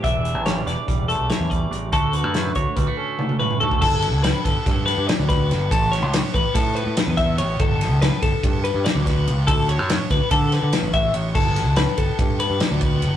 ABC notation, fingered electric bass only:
X:1
M:9/8
L:1/16
Q:3/8=96
K:Glyd
V:1 name="Fingered electric bass" clef=bass
E,,,3 A,,,3 E,,, z E,,,3 B,,, z E,,3 A,,,2 | D,,3 F,,3 D,, z D,, z8 z | G,,,3 C,,2 z G,,, z G,,3 G,, z D,,3 G,,,2 | A,,,3 C,,2 z A,,, z A,,3 A,, z E,,3 A,,,2 |
G,,,3 C,,2 z G,,, z G,,3 G,, z D,,3 C,,2 | D,,3 F,,2 z D,, z D,3 D, z A,,,3 A,,,2 | G,,,3 C,,2 z G,,, z G,,3 G,, z D,,3 G,,,2 |]